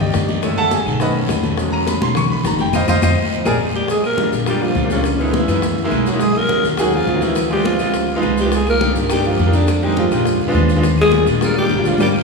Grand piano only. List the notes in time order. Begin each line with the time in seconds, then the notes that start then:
Already playing: D3 D#3 A#3
0.00 G4 D5 D#5 G5
0.43 G#3 A3 E4 A4 C#5 E5
0.58 A4 E5 F#5 A5
0.73 G#4 G#5
1.00 D#3 A3 C#4 B4 D#5 F#5 B5
1.58 F#3 G#3 C#4
1.72 A#5
1.88 B5
2.03 C6
2.17 C#6
2.31 B5
2.47 A#5
2.61 G5
2.75 C5 D#5 F5
2.89 C5 D#5 F5
3.03 C5 D#5 F5
3.46 G#4 A#4 D5
4.18 G3 A#3 D4 F4
4.47 G3 A#3 D4 F4
4.84 G3 A#3 D4 F4
5.19 G#3 B3 D#4 E4
5.48 G#3 B3 D#4 E4
5.84 G#3 A#3 D#4 E4
6.13 G#3 A#3 D#4 E4
6.50 A#3 C#4 D#4 F#4
6.79 A#3 C#4 D#4 G#4
7.14 A#3 C#4 D#4 F#4
7.51 G#3 C4 E4 F4
7.79 G#3 C4 E4 F4
8.16 G#3 B3 D#4 F4
8.45 G#3 B3 D#4 F4
8.81 A#3 D4 D#4 G4
9.10 A#3 D4 D#4 G4
9.46 A#3 D4 D#4 G4
9.83 G#3 C4 D#4 G4
10.12 G#3 C4 D#4 G4
10.48 G#3 B3 D4 F4
10.76 G#3 B3 D4 F4
11.13 G3 A#3 D4 F4
11.41 G3 A#3 D4 F4
11.78 G3 A#3 D4 F4
12.00 G3 A#3 C#4